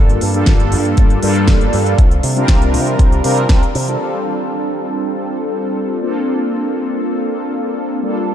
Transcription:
Already playing: G1 G3 A#3 D4 F4 A4
0.09 closed hi-hat
0.21 G2, open hi-hat
0.34 G3 A#3 D4 F4 A4, closed hi-hat
0.46 G1, kick, snare, closed hi-hat
0.60 closed hi-hat
0.72 G2, open hi-hat
0.85 closed hi-hat
0.97 G1, kick, closed hi-hat
1.10 closed hi-hat
1.22 G2 G3 A#3 D4 F4 A4, open hi-hat
1.36 closed hi-hat
1.48 G1, kick, snare, closed hi-hat
1.61 closed hi-hat
1.73 G2, open hi-hat
1.86 closed hi-hat
1.98 C2, kick, closed hi-hat
2.11 closed hi-hat
2.23 C3, open hi-hat
2.36 G3 C4 D4 F4 A#4, closed hi-hat
2.48 C2, kick, snare, closed hi-hat
2.62 closed hi-hat
2.74 C3, open hi-hat
2.87 closed hi-hat
2.99 C2, kick, closed hi-hat
3.12 closed hi-hat
3.24 C3 G3 C4 D4 F4 A#4, open hi-hat
3.37 closed hi-hat
3.49 C2 G3 C4 D4 F4 A#4, kick, snare, closed hi-hat
3.63 closed hi-hat
3.75 C3, open hi-hat
3.88 G3 C4 D4 F4 A4, closed hi-hat
3.99 G3 C4 D4 F4 A4
6.01 A#3 C4 D4 F4 A4
8.03 G3 A#3 D4 F4 A4

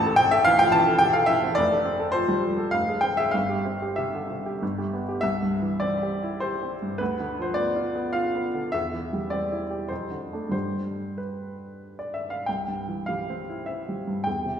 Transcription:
Already playing: A1 A5
0.06 A4
0.16 C4 G5
0.31 A4 E5
0.45 E3 F5
0.59 F3 G5
0.72 E3 A5
0.87 A4
0.99 G4 G5
1.13 A4 F5
1.26 E3 E5
1.43 C4
1.55 F1 D5
1.71 A4
1.85 C4
1.99 A4
2.12 F3 C5
2.28 G3
2.43 F3
2.58 A4
2.71 F1 F5
2.89 G#4
3.01 C4 G5
3.17 G#4 E5
3.31 G1 F5
3.49 G4
3.65 C4
3.82 G4
3.96 C3 E5
4.15 D3
4.30 C3
4.46 G4
4.62 G1
4.78 G4
4.93 B3
5.09 G4
5.21 C2 E5
5.42 G2
5.62 E3
5.80 C4 D5
6.03 G4
6.23 E4
6.40 G4 C5
6.63 C4
6.82 G2
6.98 D2 B4
7.20 D3
7.39 F3 C5
7.54 B3 D5
7.76 F4
7.96 B3
8.13 F4 F5
8.35 B3
8.54 D3
8.72 E2 E5
8.93 E3
9.13 G3
9.30 C4 D5
9.52 E4
9.70 G4
9.88 F2 C5
10.11 D3
10.33 A3 D4
10.49 G2 D3 G3 D4 C5
11.18 B4
11.99 D5
12.14 E5
12.30 F5
12.46 C2 G5
12.68 G2
12.88 E3
13.06 G3 F5
13.30 C4
13.49 E4
13.66 C4 E5
13.89 G3
14.07 G2
14.24 E2 G5
14.45 C3

